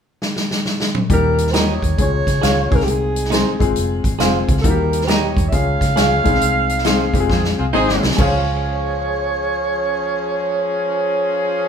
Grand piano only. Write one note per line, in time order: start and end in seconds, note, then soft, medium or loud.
1.10 1.47 G3 medium
1.10 1.47 A#3 medium
1.10 1.47 D#4 medium
1.10 1.47 G4 loud
1.53 1.91 G3 medium
1.53 1.91 A#3 medium
1.53 1.91 D#4 medium
1.53 1.61 F4 medium
1.60 1.94 G4 medium
1.98 2.35 G#3 medium
1.98 2.35 C#4 medium
1.98 2.35 F4 medium
1.98 2.36 G#4 medium
2.42 2.69 G#3 medium
2.42 2.71 C#4 medium
2.42 2.72 F4 medium
2.42 2.70 G#4 medium
2.71 3.22 G#3 medium
2.71 3.22 C4 medium
2.71 3.22 D#4 medium
2.71 3.22 G#4 medium
3.31 3.58 G#3 medium
3.31 3.58 C4 medium
3.31 3.60 D#4 medium
3.31 3.59 G#4 medium
3.59 4.10 G#3 medium
3.59 4.10 C4 medium
3.59 4.10 F4 medium
3.59 4.11 G#4 medium
4.19 4.56 G#3 medium
4.19 4.56 C4 medium
4.19 4.57 F4 medium
4.19 4.57 G#4 loud
4.64 5.01 G3 medium
4.64 5.01 A#3 medium
4.64 5.01 D#4 medium
4.64 4.71 F#4 medium
4.70 5.04 G4 loud
5.08 5.45 G3 medium
5.08 5.45 A#3 medium
5.08 5.45 D#4 medium
5.08 5.45 G4 medium
5.52 5.89 G#3 medium
5.52 5.89 C#4 medium
5.52 5.89 F4 medium
5.52 5.90 G#4 medium
5.95 6.23 G#3 medium
5.95 6.25 C#4 medium
5.95 6.26 F4 medium
5.95 6.24 G#4 medium
6.24 6.75 G#3 loud
6.24 6.29 B3 medium
6.24 6.76 D#4 medium
6.24 6.76 G#4 loud
6.30 6.78 C4 medium
6.85 7.12 G#3 medium
6.85 7.13 C4 medium
6.85 7.14 D#4 medium
6.85 7.14 G#4 medium
7.14 7.65 G#3 medium
7.14 7.65 C4 medium
7.14 7.65 F4 medium
7.14 7.18 G4 medium
7.20 7.68 G#4 medium
7.74 8.11 G#3 medium
7.74 8.11 C4 medium
7.74 8.11 D#4 medium
7.74 8.11 G#4 loud
8.16 11.68 G#3 medium
8.16 11.68 C#4 medium
8.16 11.68 F4 medium
8.21 11.68 G#4 medium